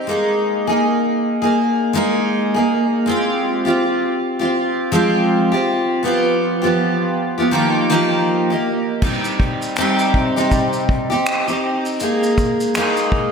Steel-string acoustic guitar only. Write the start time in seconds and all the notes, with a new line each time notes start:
0.07 G#3 A#3 D#4 G#4
0.67 A#3 D#4 G#4
1.42 A#3 D#4 G#4
1.93 G#3 A#3 D#4 G#4
2.54 A#3 D#4 G#4
3.06 G#3 C4 F4 G4
3.65 C4 F4 G4
4.39 C4 F4 G4
4.92 F3 G#3 C4 F4 G4
5.52 C4 F4 G4
6.03 F3 B3 F4 G4
6.62 F3 B3 F4 G4
7.38 F3 B3 F4 G4
7.51 D#3 F3 A#3 D#4 G4
7.90 D#3 F3 A#3 D#4 G4
8.50 A#3 D#4 G4
9.02 G3 C4 D#4 G4
9.77 C3 G3 C4 D#4 G4
10.36 C3 G3 C4 D#4 G4
11.10 C4 D#4 G4
11.47 C4 D#4 G4
12.01 G#3 A#3 D#4 G#4
12.76 G#3 A#3 D#4 G#4